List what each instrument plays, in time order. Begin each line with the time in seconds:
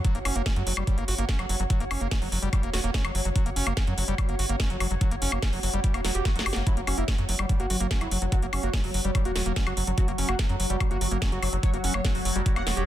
Already playing: ambient pad F#4 C#5 F#5
0.05 acid bass F#3, kick, closed hi-hat
0.15 analog synth bass F#1, acid bass A#3, closed hi-hat
0.25 analog synth bass F#1, acid bass C#4, open hi-hat, high woodblock
0.36 analog synth bass F#1, acid bass A#3, closed hi-hat
0.46 acid bass C#4, kick, snare, closed hi-hat
0.56 analog synth bass F#2, acid bass F#3, closed hi-hat
0.67 analog synth bass F#1, acid bass F#3, open hi-hat
0.77 analog synth bass F#1, acid bass G3, high woodblock
0.87 acid bass G3, kick, closed hi-hat
0.98 analog synth bass G1, acid bass A#3, closed hi-hat
1.08 analog synth bass G1, acid bass F#4, open hi-hat
1.18 analog synth bass G1, acid bass A#3, closed hi-hat
1.29 acid bass C#4, kick, snare, closed hi-hat
1.39 analog synth bass F#1, acid bass F#3, closed hi-hat, high woodblock
1.49 analog synth bass F#1, acid bass F#3, open hi-hat
1.60 analog synth bass F#1, acid bass F#3, closed hi-hat
1.70 acid bass F#3, kick, closed hi-hat
1.80 analog synth bass F#1, acid bass A#3, closed hi-hat
1.91 analog synth bass F#1, acid bass C#4, open hi-hat, high woodblock
2.01 analog synth bass F#1, acid bass A#3, closed hi-hat
2.11 acid bass C#4, kick, snare, closed hi-hat
2.22 analog synth bass F#1, acid bass F#3, open hi-hat
2.32 analog synth bass F#1, acid bass F#3, open hi-hat
2.42 analog synth bass F#1, acid bass G3, closed hi-hat
2.53 acid bass G3, kick, closed hi-hat, high woodblock
2.63 analog synth bass E1, acid bass A#3, closed hi-hat
2.74 analog synth bass E1, acid bass F#4, snare, open hi-hat
2.84 analog synth bass E1, acid bass A#3, closed hi-hat
2.94 acid bass C#4, kick, snare, closed hi-hat
3.05 analog synth bass F#1, acid bass F#3, closed hi-hat, high woodblock
3.15 analog synth bass F#1, acid bass F#3, open hi-hat
3.25 analog synth bass F#1, acid bass F#3, closed hi-hat
3.36 acid bass F#3, kick, closed hi-hat
3.46 analog synth bass F#1, acid bass A#3, closed hi-hat
3.56 analog synth bass F#1, acid bass C#4, open hi-hat
3.67 analog synth bass F#1, acid bass A#3, closed hi-hat, high woodblock
3.77 acid bass C#4, kick, snare, closed hi-hat
3.87 analog synth bass F#2, acid bass F#3, closed hi-hat
3.98 analog synth bass F#1, acid bass F#3, open hi-hat
4.08 analog synth bass F#1, acid bass G3, closed hi-hat
4.18 acid bass G3, kick, closed hi-hat, high woodblock
4.29 analog synth bass G1, acid bass A#3, closed hi-hat
4.39 analog synth bass G1, acid bass F#4, open hi-hat
4.49 analog synth bass G1, acid bass A#3, closed hi-hat
4.60 acid bass C#4, kick, snare, closed hi-hat
4.70 analog synth bass F#1, acid bass F#3, closed hi-hat
4.80 analog synth bass F#1, acid bass F#3, open hi-hat, high woodblock
4.91 analog synth bass F#1, acid bass F#3, closed hi-hat
5.01 acid bass F#3, kick, closed hi-hat
5.11 analog synth bass F#1, acid bass A#3, closed hi-hat
5.22 analog synth bass F#1, acid bass C#4, open hi-hat
5.32 analog synth bass F#1, acid bass A#3, high woodblock
5.42 acid bass C#4, kick, snare, closed hi-hat
5.53 analog synth bass F#1, acid bass F#3, open hi-hat
5.63 analog synth bass F#1, acid bass F#3, open hi-hat
5.74 analog synth bass F#1, acid bass G3, closed hi-hat
5.84 acid bass G3, kick, closed hi-hat, swell
5.94 analog synth bass E1, acid bass A#3, closed hi-hat, high woodblock
6.05 analog synth bass E1, acid bass F#3, snare, open hi-hat
6.15 analog synth bass E1, acid bass G4, closed hi-hat
6.25 acid bass G3, kick, snare, closed hi-hat
6.36 analog synth bass F#1, acid bass F#3, snare, closed hi-hat
6.46 analog synth bass F#1, acid bass G4, open hi-hat, high woodblock
6.53 analog synth bass F#1, acid bass A#3, snare, closed hi-hat
6.67 acid bass F#3, synth drone F#3, analog synth lead E4, kick, closed hi-hat
6.77 analog synth bass F#1, analog synth lead F#3, acid bass A#3, closed hi-hat
6.87 analog synth bass F#1, analog synth lead F#3, acid bass C#4, open hi-hat, high woodblock
6.98 analog synth bass F#1, acid bass A#3, analog synth lead E4, closed hi-hat
7.08 analog synth lead F#3, acid bass C#4, kick, snare, closed hi-hat
7.18 analog synth bass F#2, analog synth lead F#3, acid bass F#3, closed hi-hat
7.29 analog synth bass F#1, acid bass F#3, open hi-hat
7.39 analog synth bass F#1, analog synth lead F#3, acid bass G3, high woodblock
7.49 analog synth lead F#3, acid bass G3, kick, closed hi-hat
7.60 analog synth bass G1, acid bass A#3, analog synth lead F#4, closed hi-hat
7.70 analog synth bass G1, analog synth lead F#3, acid bass F#4, open hi-hat
7.80 analog synth bass G1, analog synth lead F#3, acid bass A#3, closed hi-hat
7.91 analog synth lead F#3, acid bass C#4, kick, snare, closed hi-hat
8.01 analog synth bass F#1, acid bass F#3, analog synth lead E4, closed hi-hat, high woodblock
8.11 analog synth bass F#1, analog synth lead F#3, acid bass F#3, open hi-hat
8.22 analog synth bass F#1, analog synth lead F#3, acid bass F#3, closed hi-hat
8.32 acid bass F#3, analog synth lead F#4, kick, closed hi-hat
8.42 analog synth bass F#1, analog synth lead F#3, acid bass A#3, closed hi-hat
8.53 analog synth bass F#1, analog synth lead F#3, acid bass C#4, open hi-hat, high woodblock
8.63 analog synth bass F#1, acid bass A#3, analog synth lead F#4, closed hi-hat
8.73 analog synth lead F#3, acid bass C#4, kick, snare, closed hi-hat
8.84 analog synth bass F#1, analog synth lead F#3, acid bass F#3, open hi-hat
8.94 analog synth bass F#1, acid bass F#3, open hi-hat
9.05 analog synth bass F#1, analog synth lead F#3, acid bass G3, closed hi-hat
9.15 analog synth lead F#3, acid bass G3, kick, closed hi-hat, high woodblock
9.25 analog synth bass E1, acid bass A#3, analog synth lead F#4, closed hi-hat
9.36 analog synth bass E1, analog synth lead F#3, acid bass F#4, snare, open hi-hat
9.46 analog synth bass E1, analog synth lead F#3, acid bass A#3, closed hi-hat
9.56 analog synth lead F#3, acid bass C#4, kick, snare, closed hi-hat
9.67 analog synth bass F#1, acid bass F#3, analog synth lead F#4, closed hi-hat, high woodblock
9.77 analog synth bass F#1, acid bass F#3, analog synth lead F#3, open hi-hat
9.87 analog synth bass F#1, acid bass F#3, analog synth lead F#3, closed hi-hat
9.98 acid bass F#3, analog synth lead F#4, kick, closed hi-hat
10.08 analog synth bass F#1, analog synth lead F#3, acid bass A#3, closed hi-hat
10.18 analog synth bass F#1, analog synth lead F#3, acid bass C#4, open hi-hat
10.29 analog synth bass F#1, acid bass A#3, analog synth lead F#4, closed hi-hat, high woodblock
10.39 analog synth lead F#3, acid bass C#4, kick, snare, closed hi-hat
10.49 analog synth bass F#2, acid bass F#3, analog synth lead F#3, closed hi-hat
10.60 analog synth bass F#1, acid bass F#3, open hi-hat
10.70 analog synth bass F#1, analog synth lead F#3, acid bass G3, closed hi-hat
10.80 analog synth lead F#3, acid bass G3, kick, closed hi-hat, high woodblock
10.91 analog synth bass G1, acid bass A#3, analog synth lead F#4, closed hi-hat
11.01 analog synth bass G1, analog synth lead F#3, acid bass F#4, open hi-hat
11.11 analog synth bass G1, analog synth lead F#3, acid bass A#3, closed hi-hat
11.22 analog synth lead F#3, acid bass C#4, kick, snare, closed hi-hat
11.32 analog synth bass F#1, acid bass F#3, analog synth lead F#4, closed hi-hat
11.42 analog synth bass F#1, acid bass F#3, analog synth lead F#3, open hi-hat, high woodblock
11.53 analog synth bass F#1, analog synth lead F#3, acid bass F#3, closed hi-hat
11.63 acid bass F#3, analog synth lead C#5, kick, closed hi-hat
11.74 analog synth bass F#1, acid bass A#3, analog synth lead F#4, closed hi-hat
11.84 analog synth bass F#1, acid bass C#4, analog synth lead F#4, open hi-hat
11.94 analog synth bass F#1, acid bass A#3, analog synth lead C#5, high woodblock
12.05 acid bass C#4, analog synth lead F#4, kick, snare, closed hi-hat
12.15 analog synth bass F#1, acid bass F#3, analog synth lead F#4, open hi-hat
12.25 analog synth bass F#1, acid bass F#3, open hi-hat
12.36 analog synth bass F#1, acid bass G3, analog synth lead F#4
12.46 acid bass G3, analog synth lead F#4, kick, closed hi-hat
12.56 analog synth bass E1, acid bass A#3, analog synth lead F#5, closed hi-hat, high woodblock
12.67 analog synth bass E1, acid bass E3, analog synth lead F#4, snare, open hi-hat
12.77 analog synth bass E1, analog synth lead F#4, acid bass G4, closed hi-hat